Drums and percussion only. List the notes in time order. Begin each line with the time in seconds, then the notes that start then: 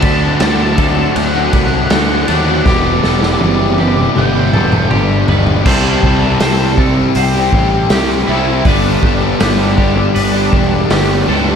0.02 kick, ride
0.40 snare, ride
0.78 kick, ride
1.16 ride
1.53 kick, ride
1.90 snare, ride
2.28 ride
2.65 kick, snare
3.04 snare
3.22 snare
3.41 high tom
3.78 high tom
3.97 mid tom
4.16 mid tom
4.53 mid tom
4.72 mid tom
4.91 mid tom
5.28 floor tom
5.47 floor tom
5.66 kick, crash
6.03 kick
6.40 snare, open hi-hat
6.78 kick
7.15 open hi-hat
7.53 kick
7.90 snare, open hi-hat
8.65 kick, open hi-hat
9.03 kick
9.40 snare, open hi-hat
9.78 kick
10.16 open hi-hat
10.53 kick
10.90 snare, open hi-hat